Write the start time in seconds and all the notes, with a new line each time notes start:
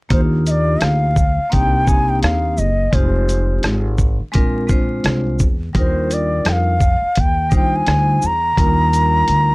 0.09 D#2 A#3 D4 D#4 F4 G4 C5, kick, closed hi-hat
0.47 D5 D#5, closed hi-hat, shaker
0.81 D2 F5, cross-stick, closed hi-hat
1.16 kick, shaker
1.38 muted upright bass stroke
1.50 C2 A#3 C4 D4 D#4 G4 G5, kick, closed hi-hat
1.85 A#3 C4 D4 D#4 G4 G#5, kick, shaker
2.09 G5
2.23 D#2 F5, cross-stick, closed hi-hat
2.58 F#1 D#5, shaker
2.91 F1 G#3 C4 D#4 F4 G4 C5, kick, closed hi-hat
3.29 closed hi-hat, shaker
3.63 G#1, cross-stick, closed hi-hat
3.98 kick, shaker
4.20 muted upright bass stroke
4.32 A#1 G#3 C4 D4 F4 A#4, kick, closed hi-hat
4.67 G#3 C4 D4 F4 C5, kick, shaker
5.04 C2, cross-stick, closed hi-hat
5.39 E2, kick, shaker
5.73 D#2 G3 D4 D#4 F4 A#4, kick, closed hi-hat
5.79 C5
6.11 D5, closed hi-hat, shaker
6.45 F2 G5, cross-stick, closed hi-hat
6.52 F5
6.80 kick, shaker
7.02 muted upright bass stroke
7.15 D#2, kick, closed hi-hat
7.20 G5
7.50 G3 D4 D#4 F4 C5, kick, shaker
7.56 G5
7.76 G#5
7.87 D2, cross-stick, closed hi-hat
8.22 E2, shaker
8.26 A#5
8.55 D#2 G3 D4 D#4 F4 A#4, kick, closed hi-hat
8.93 closed hi-hat, shaker
9.28 D2, closed hi-hat